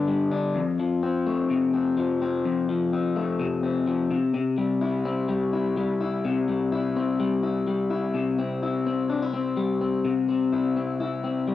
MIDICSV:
0, 0, Header, 1, 2, 480
1, 0, Start_track
1, 0, Tempo, 474308
1, 561, Time_signature, 4, 2, 24, 8
1, 11686, End_track
2, 0, Start_track
2, 0, Title_t, "Clean electric guitar"
2, 0, Program_c, 0, 27
2, 0, Note_on_c, 0, 43, 90
2, 0, Note_on_c, 0, 50, 78
2, 0, Note_on_c, 0, 59, 60
2, 0, Note_on_c, 0, 62, 65
2, 80, Note_on_c, 0, 55, 65
2, 305, Note_off_c, 0, 62, 0
2, 317, Note_on_c, 0, 62, 68
2, 551, Note_off_c, 0, 43, 0
2, 555, Note_on_c, 0, 41, 91
2, 607, Note_off_c, 0, 62, 0
2, 609, Note_off_c, 0, 55, 0
2, 612, Note_off_c, 0, 50, 0
2, 612, Note_off_c, 0, 59, 0
2, 803, Note_on_c, 0, 53, 63
2, 1042, Note_on_c, 0, 60, 74
2, 1279, Note_on_c, 0, 57, 59
2, 1519, Note_on_c, 0, 48, 74
2, 1756, Note_off_c, 0, 60, 0
2, 1760, Note_on_c, 0, 60, 63
2, 1987, Note_off_c, 0, 53, 0
2, 1999, Note_on_c, 0, 53, 71
2, 2241, Note_off_c, 0, 60, 0
2, 2245, Note_on_c, 0, 60, 66
2, 2474, Note_off_c, 0, 41, 0
2, 2486, Note_on_c, 0, 41, 88
2, 2712, Note_off_c, 0, 53, 0
2, 2724, Note_on_c, 0, 53, 72
2, 2963, Note_off_c, 0, 60, 0
2, 2967, Note_on_c, 0, 60, 78
2, 3188, Note_off_c, 0, 57, 0
2, 3200, Note_on_c, 0, 57, 65
2, 3425, Note_off_c, 0, 48, 0
2, 3437, Note_on_c, 0, 48, 69
2, 3671, Note_off_c, 0, 60, 0
2, 3675, Note_on_c, 0, 60, 70
2, 3903, Note_off_c, 0, 53, 0
2, 3915, Note_on_c, 0, 53, 69
2, 4142, Note_off_c, 0, 48, 0
2, 4154, Note_on_c, 0, 48, 82
2, 4206, Note_off_c, 0, 53, 0
2, 4208, Note_off_c, 0, 57, 0
2, 4211, Note_off_c, 0, 41, 0
2, 4381, Note_off_c, 0, 48, 0
2, 4393, Note_on_c, 0, 48, 91
2, 4632, Note_on_c, 0, 55, 68
2, 4867, Note_off_c, 0, 60, 0
2, 4871, Note_on_c, 0, 64, 75
2, 5112, Note_on_c, 0, 60, 68
2, 5348, Note_off_c, 0, 55, 0
2, 5352, Note_on_c, 0, 55, 77
2, 5592, Note_off_c, 0, 64, 0
2, 5596, Note_on_c, 0, 64, 68
2, 5835, Note_off_c, 0, 55, 0
2, 5839, Note_on_c, 0, 55, 65
2, 6075, Note_off_c, 0, 64, 0
2, 6079, Note_on_c, 0, 64, 67
2, 6311, Note_off_c, 0, 48, 0
2, 6323, Note_on_c, 0, 48, 84
2, 6560, Note_off_c, 0, 55, 0
2, 6564, Note_on_c, 0, 55, 69
2, 6799, Note_off_c, 0, 64, 0
2, 6803, Note_on_c, 0, 64, 73
2, 7042, Note_off_c, 0, 60, 0
2, 7046, Note_on_c, 0, 60, 64
2, 7281, Note_off_c, 0, 55, 0
2, 7285, Note_on_c, 0, 55, 79
2, 7518, Note_off_c, 0, 64, 0
2, 7522, Note_on_c, 0, 64, 59
2, 7762, Note_off_c, 0, 55, 0
2, 7766, Note_on_c, 0, 55, 65
2, 7995, Note_off_c, 0, 64, 0
2, 7999, Note_on_c, 0, 64, 70
2, 8231, Note_off_c, 0, 48, 0
2, 8243, Note_on_c, 0, 48, 74
2, 8484, Note_off_c, 0, 60, 0
2, 8488, Note_on_c, 0, 60, 59
2, 8730, Note_off_c, 0, 64, 0
2, 8734, Note_on_c, 0, 64, 65
2, 8960, Note_off_c, 0, 60, 0
2, 8972, Note_on_c, 0, 60, 56
2, 9202, Note_off_c, 0, 64, 0
2, 9206, Note_on_c, 0, 62, 61
2, 9335, Note_off_c, 0, 62, 0
2, 9335, Note_on_c, 0, 64, 55
2, 9435, Note_off_c, 0, 60, 0
2, 9447, Note_on_c, 0, 60, 59
2, 9681, Note_off_c, 0, 55, 0
2, 9685, Note_on_c, 0, 55, 59
2, 9916, Note_off_c, 0, 60, 0
2, 9928, Note_on_c, 0, 60, 53
2, 10157, Note_off_c, 0, 48, 0
2, 10169, Note_on_c, 0, 48, 85
2, 10397, Note_off_c, 0, 60, 0
2, 10410, Note_on_c, 0, 60, 64
2, 10639, Note_off_c, 0, 64, 0
2, 10651, Note_on_c, 0, 64, 74
2, 10879, Note_off_c, 0, 60, 0
2, 10891, Note_on_c, 0, 60, 57
2, 11121, Note_off_c, 0, 64, 0
2, 11133, Note_on_c, 0, 64, 67
2, 11361, Note_off_c, 0, 60, 0
2, 11373, Note_on_c, 0, 60, 55
2, 11609, Note_off_c, 0, 55, 0
2, 11613, Note_on_c, 0, 55, 57
2, 11686, Note_off_c, 0, 48, 0
2, 11686, Note_off_c, 0, 55, 0
2, 11686, Note_off_c, 0, 60, 0
2, 11686, Note_off_c, 0, 64, 0
2, 11686, End_track
0, 0, End_of_file